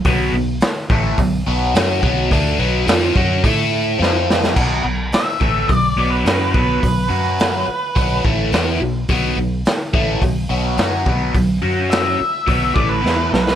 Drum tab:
CC |----------------|----------------|x---------------|----------------|
HH |o---o---o---o---|o---o---o-------|----o---o---o---|o---o---o---o---|
SD |----o-------o---|----o-------o-oo|----o-------o---|----o-------o---|
BD |o-----o-o-----o-|o-----o-o-------|o-----o-o-----o-|o-------o-o-----|

CC |----------------|----------------|
HH |o---o---o---o---|o---o---o-------|
SD |----o-------o---|----o-------o-oo|
BD |o-----o-o-----o-|o-------o-o-----|